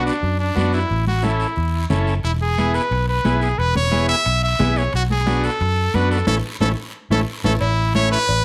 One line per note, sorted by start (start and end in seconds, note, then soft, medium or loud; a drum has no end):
0.00 0.13 B3 medium
0.00 0.13 D4 medium
0.00 0.14 F#4 medium
0.06 0.38 D4 medium
0.06 short guiro medium
0.23 0.50 F#2 medium
0.23 long guiro medium
0.40 0.71 D4 medium
0.55 0.84 F#2 medium
0.55 0.80 B3 medium
0.55 0.80 D4 medium
0.55 0.80 F#4 medium
0.55 high conga medium
0.55 short guiro medium
0.73 1.05 E4 medium
0.73 short guiro medium
0.90 1.44 A1 loud
0.90 long guiro medium
1.07 1.23 F#4 medium
1.07 high conga medium
1.23 1.47 C#4 medium
1.23 1.47 E4 medium
1.23 1.88 E4 medium
1.23 1.47 A4 medium
1.23 high conga medium
1.23 short guiro medium
1.40 short guiro medium
1.56 1.84 E2 medium
1.56 long guiro medium
1.90 2.18 F#1 medium
1.90 2.14 C#4 medium
1.90 2.14 E4 medium
1.90 2.15 A4 medium
1.90 high conga medium
1.90 low conga medium
1.90 short guiro medium
2.07 short guiro medium
2.23 2.78 E1 loud
2.23 2.32 E4 medium
2.23 high timbale medium
2.23 long guiro medium
2.42 2.76 G#4 medium
2.57 2.82 B3 medium
2.57 2.82 E4 medium
2.57 2.82 G#4 medium
2.57 high conga medium
2.57 high timbale medium
2.57 short guiro medium
2.74 3.08 B4 medium
2.74 high timbale medium
2.74 short guiro medium
2.91 3.18 B1 medium
2.91 high timbale medium
2.91 long guiro medium
3.09 3.40 B4 medium
3.24 3.52 B1 medium
3.24 3.49 B3 medium
3.24 3.49 E4 medium
3.24 3.49 G#4 medium
3.24 high conga medium
3.24 high timbale medium
3.24 low timbale medium
3.24 short guiro medium
3.41 3.60 G#4 medium
3.41 high timbale medium
3.41 short guiro medium
3.58 4.13 E1 loud
3.58 3.76 B4 loud
3.58 high timbale medium
3.58 long guiro medium
3.75 4.07 C#5 loud
3.75 high conga medium
3.75 low conga medium
3.91 4.16 B3 medium
3.91 4.16 E4 medium
3.91 4.16 G#4 medium
3.91 high conga medium
3.91 high timbale medium
3.91 short guiro medium
4.08 4.40 E5 loud
4.08 high timbale medium
4.08 short guiro medium
4.25 4.53 B1 medium
4.25 high timbale medium
4.25 long guiro medium
4.44 4.79 E5 loud
4.59 4.87 B1 medium
4.59 4.83 B3 medium
4.59 4.83 E4 medium
4.59 4.83 G#4 medium
4.59 high conga medium
4.59 low conga medium
4.59 high timbale medium
4.59 low timbale medium
4.59 short guiro medium
4.76 4.94 C#5 medium
4.76 high timbale medium
4.76 short guiro medium
4.93 5.47 B1 loud
4.93 5.03 F#4 medium
4.93 high timbale medium
4.93 long guiro medium
5.10 5.46 G#4 medium
5.10 high conga medium
5.26 5.50 B3 medium
5.26 5.50 D4 medium
5.26 5.51 F#4 medium
5.26 high conga medium
5.26 high timbale medium
5.26 short guiro medium
5.44 5.96 A4 loud
5.44 high timbale medium
5.44 short guiro medium
5.60 5.88 F#2 loud
5.60 high timbale medium
5.60 long guiro medium
5.94 6.21 F#2 medium
5.94 6.18 B3 medium
5.94 6.18 D4 medium
5.94 6.19 F#4 medium
5.94 6.11 B4 medium
5.94 high conga medium
5.94 high timbale medium
5.94 short guiro medium
6.11 6.27 A4 medium
6.11 high timbale medium
6.11 short guiro medium
6.27 6.40 A1 medium
6.27 6.38 A3 medium
6.27 6.38 C#4 medium
6.27 6.38 E4 medium
6.27 6.36 A4 loud
6.27 high conga loud
6.27 high timbale loud
6.27 long guiro medium
6.60 6.73 A1 medium
6.60 6.72 A3 medium
6.60 6.72 C#4 medium
6.60 6.72 E4 medium
6.60 6.69 A4 medium
6.60 high conga medium
6.60 high timbale medium
6.60 long guiro medium
7.10 7.24 A1 medium
7.10 7.22 A3 medium
7.10 7.22 C#4 medium
7.10 7.22 E4 medium
7.10 7.20 A4 medium
7.10 high conga medium
7.10 high timbale medium
7.10 long guiro medium
7.44 7.57 A1 loud
7.44 7.56 A3 medium
7.44 7.55 C#4 medium
7.44 7.56 E4 medium
7.44 7.53 A4 medium
7.44 high conga medium
7.44 high timbale medium
7.44 long guiro loud
7.60 8.15 A1 loud
7.60 7.92 E4 loud
7.60 cowbell loud
7.60 long guiro medium
7.95 8.19 A3 medium
7.95 8.19 C#4 medium
7.95 8.19 E4 medium
7.95 8.11 C#5 loud
7.95 cowbell medium
7.95 high conga medium
7.95 short guiro medium
8.12 8.45 B4 loud
8.12 short guiro medium
8.29 8.45 A1 loud
8.29 cowbell medium
8.29 long guiro medium